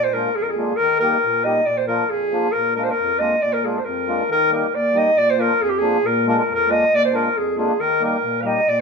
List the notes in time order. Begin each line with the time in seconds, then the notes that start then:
Already playing: A#2
0.04 C5
0.13 G#3 A#3 D4 F4 A#4
0.35 F2 G#4
0.43 A#4
0.50 G#4
0.56 G#3 A#3 D4 F4
0.77 D#3 A#4
1.00 G3 A#3 D#4 G4 A#4
1.24 A#2
1.44 G3 A#3 D#4 G4 D#5
1.66 A#2 D5
1.78 C5
1.88 F3 A#3 D4 F4 A#4
2.10 F2 G#4
2.32 F3 A#3 D4 F4
2.52 A#2 A#4
2.76 G#3 A#3 D4 F4 A#4
2.84 C5
2.90 A#4
2.98 F2
3.19 G#3 A#3 D4 F4 D#5
3.41 A#2 D5
3.53 A#4
3.63 G#3 A#3 D4 F4 G#4
3.79 C5
3.85 F2 A#4
4.07 G#3 A#3 D4 F4
4.29 D#3 A#4
4.50 G3 A#3 D#4 G4 A#4
4.72 A#2 D5
4.94 G3 A#3 D#4 G4 D#5
5.16 A#2 D5
5.31 C5
5.37 F3 A#3 D4 F4 A#4
5.60 F2 G#4
5.70 G4
5.79 F3 A#3 D4 F4 G#4
6.03 A#2 A#4
6.26 G#3 A#3 D4 F4 A#4
6.38 A#4
6.49 F2
6.55 A#4
6.67 G#3 A#3 D4 F4 D#5
6.91 A#2
6.95 D5
7.05 C5
7.12 G#3 A#3 D4 F4 A#4
7.35 F2 G#4
7.56 G#3 A#3 D4 F4 G#4
7.79 D#3 A#4
8.00 G3 A#3 D#4 G4
8.04 A#4
8.23 A#2
8.41 G3 A#3 D#4 F5
8.46 G4 D#5
8.66 A#2 D5